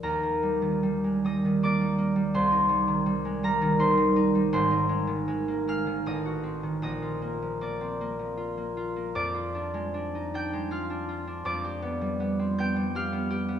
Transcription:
Already playing: A#3 D#5
0.03 D#2 A#4 A#5
0.23 A#3
0.43 G3
0.62 D#3
0.83 G3
1.04 G#3
1.24 G3 D#5 D#6
1.45 D#3
1.63 A#3 D5 D6
1.81 G3
1.98 A#3
2.16 G3
2.34 C2 C5 C6
2.52 D#4
2.69 G3
2.88 D#3
3.06 G3
3.25 G#3
3.43 G3 A#4 A#5
3.62 D#3
3.79 D#4 C5 C6
3.97 G3
4.16 D#4
4.35 G3
4.53 G#1 C5 C6
4.71 D#4
4.89 G#3
5.07 D#3
5.28 G#3
5.48 A#3
5.68 G#3 F5 F6
5.87 D#3
6.06 A1 D#5 D#6
6.26 F#4
6.43 C4
6.63 D#3
6.82 A#1 D#5 D#6
7.02 F4
7.22 A#3
7.42 F3
7.61 A#3 D5 D6
7.81 C4
8.01 A#3
8.19 F3
8.37 F4
8.58 A#3
8.77 F4
8.96 A#3
9.15 F2 D5 D6
9.34 F4
9.55 D4
9.74 G#3
9.94 D4
10.15 D#4
10.34 D4 G5 G6
10.53 G#3
10.71 F4 F5 F6
10.90 D4
11.09 F4
11.27 D4
11.45 F2 D5 D6
11.64 G4
11.82 B3
12.01 G3
12.20 B3
12.39 C4
12.58 B3 G5 G6
12.76 G3
12.95 G4 F5 F6
13.12 B3
13.30 G4
13.49 B3

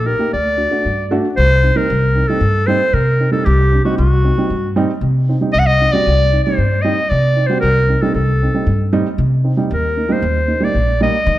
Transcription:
Already playing: A#1
0.05 D#4 G4 A#4
0.19 A#3 D#4 G4
0.33 D2 D5
0.57 D4 F#4
0.71 A3 D4 F#4
0.85 G2
1.11 A3 D4 F#4
1.36 C2 C5
1.63 C4 D#4
1.75 G3 C4 D#4 A#4
1.90 C2
2.15 C4 D#4
2.28 G3 C4 D#4 A4
2.41 G2
2.67 G3 C4 D#4 C5
2.93 C3 A#4
3.20 C4 D#4
3.32 G3 C4 D#4 A4
3.45 C2 G4
3.72 C4 D4
3.85 G3 C4 D#4 F#4
3.98 C2 F#4
4.24 C4 D#4
4.38 G3 C4 D#4
4.50 G2
4.76 G3 C4 D#4
5.01 C3
5.29 C4 D#4
5.41 G3 C4 D#4
5.53 C2 D#5
5.59 F#5
5.67 D#5
5.80 C4 D#4
5.92 G3 C4 F#4 D5
6.06 C2
6.32 C4 D#4
6.44 G3 C4 D#4 C5
6.58 G2
6.82 G3 C4 D#4 D#5
7.09 C3 D5
7.36 C4 D#4
7.47 G3 C4 F#4 C5
7.61 C2 A#4
7.88 C4 D#4
8.02 G3 C4 D#4 A4
8.14 C2 A4
8.42 C4 D#4
8.54 G3 C4 D#4
8.67 G2
8.93 G3 C4 D#4
9.18 C3
9.44 C4 D#4
9.57 G3 C4 D#4
9.71 D#2 A#4
9.97 A#3 D#4
10.09 G3 A#3 D#4 C5
10.22 D#2
10.48 A#3 D#4
10.60 G3 A#3 D#4 D5
10.75 A#1
11.01 G3 A#3 D#4 D#5
11.26 D#3

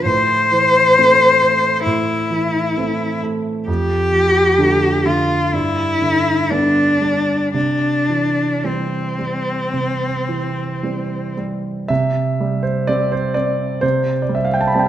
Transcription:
0.05 A2 C5
0.52 E3
0.98 E3 A3 C4
1.42 A3
1.86 A2 E4
2.30 E3
2.77 E3 A3 C4
3.23 A3
3.67 F2 G4
4.12 F3
4.58 D3 A3 D4
5.06 D3 F4
5.54 G2 E4
6.02 D3
6.51 D3 G3 B3 D4
7.01 G3
7.54 C3 D4
8.09 E3
8.64 E3 G3 C4
9.19 G3
9.73 C3
10.28 E3
10.83 E3 G3 C4
11.37 G3
11.88 C3 E5
12.40 G3
12.63 C5
12.87 G3 C4 D5
13.12 C5
13.34 C4 D5
13.81 C3 C5
14.22 D5
14.29 G3
14.35 E5
14.45 F5
14.54 G5
14.61 A5
14.67 B5
14.74 G3 C4 A5
14.79 G5

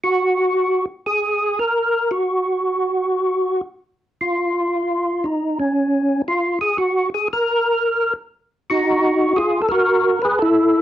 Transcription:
0.04 F#4
1.06 G#4
1.59 A#4
2.11 F#4
4.21 F4
5.24 D#4
5.59 C#4
6.28 F4
6.61 G#4
6.78 F#4
7.14 G#4
7.33 A#4
8.70 D#4 F#4
9.36 F4 G#4
9.62 A4
9.69 F#4 A#4
10.22 G#4 B4
10.39 E4 A4

